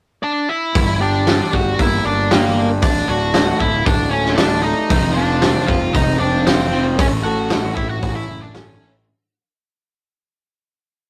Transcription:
0.23 D4 D5
0.49 E4 E5
0.75 G1 G2, kick, open hi-hat
1.01 D4 G4 D5
1.27 D4, snare, open hi-hat
1.53 G1 G3 F#4 F#5, kick
1.78 G1 A#3 E4 E5, kick, open hi-hat
2.05 G1 D4 D5
2.31 A#3 G4 A#4, snare, open hi-hat
2.57 D4
2.82 D1 D2 D4 D5, kick, open hi-hat
3.08 D1 D4 F#4 F#5
3.34 A3, snare, open hi-hat
3.60 D1 D3 E4 E5, kick
3.85 D1 F#3 D4 D5, kick, open hi-hat
4.11 A3 C#4 C#5
4.25 snare
4.36 D4 D5, snare, open hi-hat
4.63 A3 D#4 D#5
4.89 F1 F2 C3 F3, kick, open hi-hat
5.14 D4 F4 D5
5.42 C4, snare, open hi-hat
5.67 F1 F3 F4 F5, kick
5.94 F1 G#3 D#4 D#5, kick, open hi-hat
6.19 F1 C4 D4 D5
6.46 C4 F4 C5, snare, open hi-hat
6.72 F2 C3 F3 C4
6.99 A1 A2 E3 A3 C#4 C#5, kick, open hi-hat
7.23 A1 F#4 A4 F#5
7.50 E4, snare, open hi-hat
7.75 A1 A3 E4 E5, kick
7.89 F#4 F#5
8.02 A1 C#4, kick, open hi-hat
8.15 E4 E5
8.28 F#1 E4
8.42 D4 D5
8.55 G1 C#4 A4 C#5, snare, open hi-hat
8.80 A1 A2 E3 A3 E4

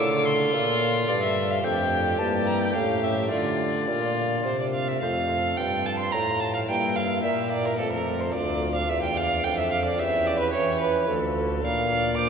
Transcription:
Already playing: A3 F4 A4
0.00 D3 F4 D6
0.26 C6
0.53 A#2
1.08 G2 D5
1.23 E5
1.51 F5
1.59 A3 D4 A4
1.63 F2 G4 G5
2.14 A#3 E4 G4
2.19 G2 A5
2.47 A#5
2.61 G5
2.70 A3 C#4 G4 F5
2.75 A2
3.03 E5
3.27 A3 D4 F4
3.31 D3 D5
3.88 A#2 F4
4.45 C3 C5
4.60 D5
4.74 F5
4.88 E5
4.98 F2 A3 C4 F4 F5
5.02 F2 C5
5.30 A4
5.57 G2 G5
5.86 A5
5.99 C6
6.12 A2 F4 A#5
6.40 A5
6.55 F5
6.65 G2 A#3 E4
6.69 G2 E4 G5
6.95 F5
7.23 A#2 G4 E5
7.52 D5
7.66 A#4
7.75 F2 A3 C4 F4 A4
7.79 F2
7.92 A#4
8.20 C5
8.29 A3 D4 F4
8.33 D2 F4 D5
8.75 F5
8.89 E2 E5
9.03 G5
9.17 F5
9.44 F2 G5
9.58 E5
9.72 F5
9.86 D5
9.96 E2 C#4 E4 G4 E5
10.27 D5
10.39 B4
10.53 E3 C#5
10.81 B4
11.05 D2 A3 D4 F4 A4
11.09 D2
11.59 A#3 D4 F4
11.63 A#2 A#4 F5
11.92 D5
12.17 A#2 C5 D6

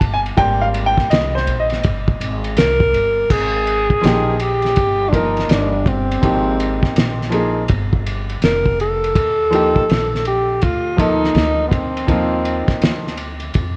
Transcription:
Already playing: A5
0.01 G1, kick, ride
0.13 G#5
0.26 ride
0.37 G#1 G3 A#3 C4 G5, kick, ride
0.61 F5
0.74 ride
0.86 G5
0.97 muted upright bass stroke, kick, snare
1.10 C2 D#5, snare, hi-hat pedal, ride
1.35 C5, snare
1.47 A#1, ride
1.60 D#5
1.70 snare, ride
1.83 G1, kick, ride
2.08 kick
2.20 G#1, ride
2.44 ride
2.57 C2 A#4, snare, hi-hat pedal, ride
2.80 kick
2.93 G1, ride
3.30 G#1 G#4, kick, crash
3.67 ride
3.90 muted upright bass stroke, kick, ride
4.01 A#1 F3 A#3 D#4 G4, hi-hat pedal, ride
4.05 snare
4.36 G#4, ride
4.41 G4
4.62 snare, ride
4.76 G1, kick, ride
5.09 F3 A#3 D4, kick
5.14 D#4 A#4, ride
5.37 snare, ride
5.47 G1 D#4, hi-hat pedal, ride
5.51 D4, snare
5.86 C4, kick, ride
6.12 ride
6.21 G#1 F3 A#3 D#4 G4, kick, ride
6.60 ride
6.83 muted upright bass stroke, kick, snare
6.96 A#1, snare, hi-hat pedal, ride
7.22 snare
7.30 F3 A#3 D#4, ride
7.34 G#4
7.68 G1, kick, ride
7.93 kick
8.07 ride
8.30 ride
8.42 F1 A#4, snare, hi-hat pedal, ride
8.66 kick
8.80 A4, ride
9.04 ride
9.16 D#2, kick, ride
9.51 F3 A#3 D#4 G4, ride
9.76 kick
9.89 A#1, snare, hi-hat pedal, ride
10.15 snare
10.25 G4, ride
10.61 D2 F4, kick, ride
10.97 F3 A#3 D#4 A4, kick, ride
11.24 snare
11.35 D2, snare, hi-hat pedal, ride
11.68 B3, kick
11.73 C4, ride
11.97 ride
12.07 D#2 F3 A#3 D#4 F4, kick, ride
12.45 ride
12.68 kick, snare, ride
12.81 D2, snare, hi-hat pedal, ride
13.07 snare
13.18 ride
13.40 ride
13.54 F2, kick, ride

